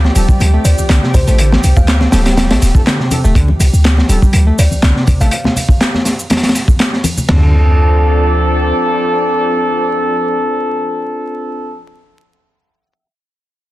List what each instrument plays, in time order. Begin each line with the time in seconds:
Already playing: 808-style bass D2, analog synth pad F3 C4 G4 D5
0.04 snare, high conga
0.15 808-style bass D1, picked electric bass G3, brass ensemble C4 D4 F4 A4, closed hi-hat, ride, shaker
0.29 kick, shaker
0.40 808-style bass D2, closed hi-hat, high conga, shaker
0.54 picked electric bass A3
0.65 808-style bass D2, kalimba D5, closed hi-hat, ride, shaker
0.78 808-style bass C2, high conga, shaker
0.89 808-style bass C2, picked electric bass D3, snare, clap, closed hi-hat, shaker
1.03 picked electric bass C3, snare
1.14 808-style bass D2, kalimba C5, kick, closed hi-hat, ride, high conga, shaker
1.27 808-style bass A1, picked electric bass A3, brass ensemble C4 D4 F4 A4, kalimba C5, closed hi-hat, low conga, shaker
1.38 picked electric bass D3, closed hi-hat, shaker
1.52 snare, high conga
1.64 808-style bass C2, closed hi-hat, ride, low conga, shaker
1.76 808-style bass D2, kalimba F5, kick, shaker
1.88 snare, clap, closed hi-hat, shaker
2.01 snare, high conga
2.12 808-style bass D1, picked electric bass G3, brass ensemble C4 D4 F4 A4, snare, closed hi-hat, ride, shaker
2.26 snare, closed hi-hat, shaker
2.37 snare, closed hi-hat, high conga, shaker
2.50 808-style bass C2, picked electric bass A3, snare, closed hi-hat, ride
2.62 808-style bass D1, snare, closed hi-hat, ride, shaker
2.75 brass ensemble C4 D4 F4 A4, kick, high conga, shaker
2.87 picked electric bass D3, snare, clap, closed hi-hat, shaker
2.99 picked electric bass C3, snare
3.11 brass ensemble C4 D4 F4 A4, closed hi-hat, ride, high conga, shaker
3.24 808-style bass D1, picked electric bass A3, low conga, shaker
3.35 808-style bass D2, picked electric bass D3, kick, closed hi-hat, shaker
3.48 high conga
3.60 808-style bass C2, closed hi-hat, ride, low conga, shaker
3.73 808-style bass D2, shaker
3.85 snare, clap, closed hi-hat, shaker
3.97 snare, high conga
4.09 808-style bass D1, picked electric bass G3, brass ensemble C4 D4 F4 A4, closed hi-hat, ride, shaker
4.22 kick, shaker
4.33 808-style bass D2, closed hi-hat, high conga, shaker
4.47 picked electric bass A3
4.59 808-style bass D2, kalimba D5, closed hi-hat, ride, shaker
4.71 808-style bass C2, high conga, shaker
4.83 808-style bass C2, picked electric bass D3, snare, clap, closed hi-hat, shaker
4.96 picked electric bass C3, snare
5.07 808-style bass D2, kick, closed hi-hat, ride, high conga, shaker
5.20 808-style bass A1, picked electric bass A3, brass ensemble C4 D4 F4 A4, kalimba F5, closed hi-hat, low conga, shaker
5.31 kalimba F5, closed hi-hat, shaker
5.44 snare, high conga, low conga
5.56 closed hi-hat, ride, low conga, shaker
5.69 kick, shaker
5.81 snare, clap, closed hi-hat, shaker
5.94 snare, high conga
6.05 snare, closed hi-hat, ride, shaker
6.19 shaker
6.30 snare, closed hi-hat, high conga, shaker
6.37 snare, closed hi-hat
6.43 snare, closed hi-hat, ride
6.49 snare, closed hi-hat
6.55 snare, closed hi-hat, ride, shaker
6.68 kick, high conga, shaker
6.79 snare, clap, closed hi-hat, shaker
6.93 snare
7.04 closed hi-hat, ride, high conga, shaker
7.17 low conga, shaker
7.29 808-style bass D2, picked electric bass D3, analog synth pad F3 C4 A4 D5, brass ensemble C4 D4 F4 A4, snare, floor tom, ride bell